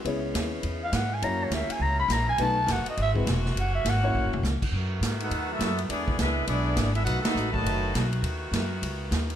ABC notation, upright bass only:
X:1
M:4/4
L:1/8
Q:"Swing" 1/4=205
K:F#mix
V:1 name="Upright bass" clef=bass
C,,2 D,,2 E,,2 G,,2 | F,,2 =D,, z C,,2 A,,,2 | B,,,2 F,,, z G,,,2 E,,,2 | F,,,2 G,,,2 (3A,,, F,,, E,,, C,, z |
[K:B] F,,2 G,,2 D,,2 F,,2 | E,,2 C,,2 B,,,2 G,,,2 | B,,, z =A,,,2 F,,,2 B,,,2 | D,,2 F,,2 C,,2 D,,2 |]